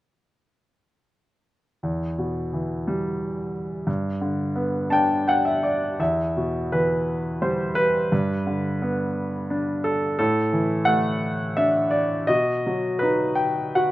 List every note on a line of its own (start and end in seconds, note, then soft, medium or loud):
1.83 3.84 E2 soft
2.18 3.50 B2 soft
2.53 3.84 E3 soft
2.87 3.85 G3 soft
3.87 5.95 G2 soft
4.21 5.59 D3 soft
4.56 5.95 B3 soft
4.90 5.96 D4 soft
4.90 5.26 G5 soft
4.90 5.24 A5 soft
5.28 6.03 F#5 medium
5.28 5.44 G5 soft
5.45 5.62 E5 soft
5.63 5.97 D5 soft
5.99 8.07 E2 soft
5.99 6.74 E5 soft
6.37 7.73 B2 soft
6.72 8.08 E3 soft
6.72 7.44 B4 soft
7.42 8.10 G3 soft
7.42 7.78 C5 soft
7.75 9.80 B4 medium
8.12 10.15 G2 soft
8.47 9.81 D3 soft
8.82 10.15 B3 soft
9.50 10.17 D4 soft
9.84 10.17 A4 soft
10.19 12.25 A2 soft
10.19 10.90 A4 medium
10.53 11.89 E3 soft
10.85 12.24 A3 soft
10.85 11.58 F#5 medium
11.57 12.27 D4 soft
11.57 11.94 E5 medium
11.91 12.29 D5 soft
12.27 13.92 B2 soft
12.27 13.03 D#5 medium
12.67 13.92 F#3 soft
12.99 13.92 D#4 soft
12.99 13.38 B4 soft
13.35 13.75 G5 soft
13.75 13.92 F#4 soft
13.75 13.92 F#5 medium